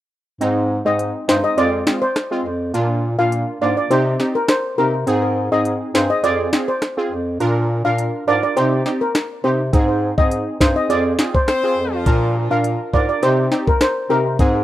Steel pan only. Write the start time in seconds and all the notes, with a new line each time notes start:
0.86 D#5
1.29 C5
1.44 D#5
1.58 D5
2.02 C5
3.19 F5
3.62 D5
3.77 D5
3.91 C5
4.35 A#4
4.49 C5
4.78 A#4
5.52 D#5
5.95 C5
6.10 D#5
6.24 D5
6.68 C5
7.85 F5
8.28 D5
8.43 D5
8.57 C5
9.01 A#4
9.44 C5
10.18 D#5
10.61 C5
10.76 D#5
10.90 D5
11.35 C5
12.51 F5
12.94 D5
13.09 D5
13.23 C5
13.68 A#4
13.82 C5
14.10 A#4